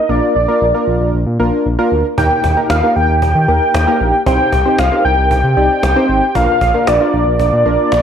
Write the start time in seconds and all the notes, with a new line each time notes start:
Already playing: D#5
0.09 A#1 A#3 D4 F4 A#4 D5
0.35 A#1 D5
0.48 A#3 D4 F4 A#4
0.61 A#1
0.74 A#3 D4 F4 A#4
0.87 A#1
1.00 A#1
1.13 A#1
1.26 A#2
1.39 A#1 A#3 D4 F4 A#4
1.66 A#1
1.79 A#3 D4 F4 A#4
1.92 D2
2.18 D#2 A#3 D#4 G4 A#4 G5, cajon bass
2.31 cajon slap
2.44 D#2, cajon bass
2.57 A#3 D#4 G4 A#4, cajon slap
2.70 D#2 F5, cajon slap
2.83 A#3 D#4 G4 A#4, cajon slap
2.96 D#2 G5, cajon slap
3.09 D#2, cajon slap
3.22 D#2 G5, cajon bass
3.35 D#3, cajon slap
3.48 D#2 A#3 D#4 G4 A#4, cajon slap
3.61 cajon slap
3.74 D#2, cajon slap
3.87 A#3 D#4 G4 A#4, cajon slap
4.00 A#1, cajon slap
4.13 cajon slap
4.26 C2 C4 D#4 G4 C5 G5, cajon bass
4.40 cajon slap
4.52 C2, cajon bass
4.66 C4 D#4 G4 C5, cajon slap
4.79 C2 F5, cajon slap
4.92 C4 D#4 G4 A#4, cajon slap
5.05 C2 G5, cajon slap
5.18 C2, cajon slap
5.31 C2 G5, cajon bass
5.44 C3, cajon slap
5.57 C2 C4 D#4 G4 D5, cajon slap
5.70 cajon slap
5.83 C2, cajon slap
5.96 C4 D#4 G4 C5, cajon slap
6.09 G#1, cajon slap
6.22 cajon slap
6.35 A#1 A#3 D4 F4 A#4 F5, cajon bass
6.48 cajon slap
6.61 A#1, cajon bass
6.74 A#3 D4 F4 A#4, cajon slap
6.87 A#1 D5, cajon slap
7.00 A#3 D4 F4 A#4, cajon slap
7.13 A#1, cajon slap
7.26 A#1, cajon slap
7.39 A#1 D5, cajon bass
7.52 A#2, cajon slap
7.65 A#1 A#3 D4 F4 A#4, cajon slap
7.79 cajon slap
7.92 A#1, cajon slap